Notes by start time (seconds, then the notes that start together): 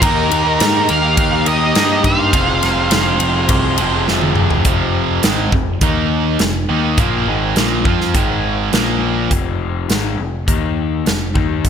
0.01 D#2 D#3 A#3 D#4 G4 A#4, kick, ride
0.29 D#2 D#3 A#3 D#4 G4, ride
0.43 A#3 D#4 G4
0.58 G#2 D#3 A#3 D#4 G4, snare, ride
0.89 D#2 A#4 F5, ride
1.01 A#3 D#4 G4
1.17 D#2, kick, ride
1.31 A#3 D#4 G4
1.45 D#3 A#3 D#4 G4 A#4 D#5, ride
1.60 A#3 D#4 G4
1.75 G2 D#3 A#3 D#4 G4, snare, ride
2.04 D#3 A#3 D#4 G4 C5 F5, kick, ride
2.18 A#3 D#4 G4
2.33 F1 F2 C3 F3 G#3 C4 G#4, kick, ride
2.62 F1 F3 G#3 C4 G#4, snare, ride
2.76 F3 G#3 C4 G#4
2.91 F1 F2 C3 F3 G#3 C4 G#4, snare, ride
3.20 F1, ride
3.35 F3 G#3 C4 G#4
3.49 C2, kick, ride
3.63 F3 G#3 C4 G#4
3.78 F1 C3 F3 G#3 C4 G#4, ride
3.82 F2
3.92 F3 G#3 C4 G#4
4.07 F1 F2 C3 F3 G#3 C4 G#4, snare
4.21 high tom
4.36 F1 F3 G#3 C4 G#4, mid tom
4.50 F3 G#3 C4 G#4, floor tom
4.65 F1 F2 C3 F3, kick, closed hi-hat
5.23 G#1 G#2 D#3 G#3, snare, closed hi-hat
5.52 F1 F2 C3, kick
5.81 D#2 D#3 A#3 D#4, kick, closed hi-hat
6.39 F1 F2 C3, snare, closed hi-hat
6.69 D#2 D#3 A#3 D#4
6.98 A#1 A#2 F3 A#3, kick, closed hi-hat
7.27 G#1 G#2 D#3 G#3
7.56 A#1 A#2 F3 A#3, snare, closed hi-hat
7.85 F2 F3 C4 F4, kick
8.01 snare
8.14 G#1 G#2 D#3 G#3, kick, closed hi-hat
8.72 A#1 A#2 F3 A#3, snare, closed hi-hat
9.30 F1 F2 C3 F3, kick, closed hi-hat
9.89 G#1 G#2 D#3 G#3, snare, closed hi-hat
10.18 F1 F2 C3
10.47 D#2 D#3 A#3 D#4, kick, closed hi-hat
11.06 F1 F2 C3, snare, closed hi-hat
11.34 D#2 D#3 A#3 D#4, kick
11.64 F1 F2 C3, kick, closed hi-hat